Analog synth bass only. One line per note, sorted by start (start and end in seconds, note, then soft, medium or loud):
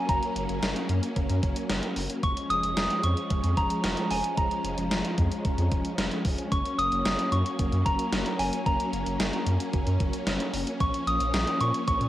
0.09 0.20 F#1 loud
0.36 0.47 F#1 medium
0.49 0.60 F#1 medium
0.63 0.73 F#1 loud
0.89 1.00 F#2 medium
1.16 1.27 F#1 loud
1.30 1.40 F#2 loud
1.43 1.54 F#1 loud
1.70 1.81 F#1 loud
1.97 2.07 F#1 loud
2.23 2.34 F1 loud
2.50 2.61 F1 loud
2.63 2.74 F1 loud
2.77 2.88 F1 loud
3.04 3.15 F2 loud
3.31 3.41 F1 loud
3.44 3.55 F2 loud
3.57 3.68 F1 medium
3.84 3.95 F1 loud
4.11 4.22 F1 loud
4.38 4.48 F1 loud
4.64 4.75 F1 loud
4.78 4.89 F1 loud
4.91 5.02 F1 loud
5.18 5.29 F2 loud
5.45 5.56 F1 loud
5.58 5.69 F2 loud
5.72 5.83 F1 loud
5.98 6.09 F1 loud
6.25 6.36 F1 loud
6.52 6.63 F#1 loud
6.79 6.89 F#1 loud
6.92 7.03 F#1 loud
7.05 7.16 F#1 loud
7.32 7.43 F#2 loud
7.59 7.70 F#1 loud
7.72 7.83 F#2 loud
7.86 7.97 F#1 loud
8.12 8.23 F#1 loud
8.39 8.50 F#1 loud
8.66 8.77 F#1 loud
8.93 9.04 F#1 loud
9.06 9.17 F#1 medium
9.20 9.31 F#1 loud
9.46 9.57 F#2 loud
9.74 9.84 F#1 loud
9.87 9.98 F#2 loud
10.00 10.11 F#1 loud
10.27 10.38 F#1 loud
10.54 10.65 F#1 loud
10.80 10.91 A#1 loud
11.07 11.18 A#1 loud
11.21 11.31 A#1 loud
11.34 11.45 A#1 loud
11.61 11.72 A#2 loud
11.88 11.99 A#1 medium
12.01 12.09 A#2 medium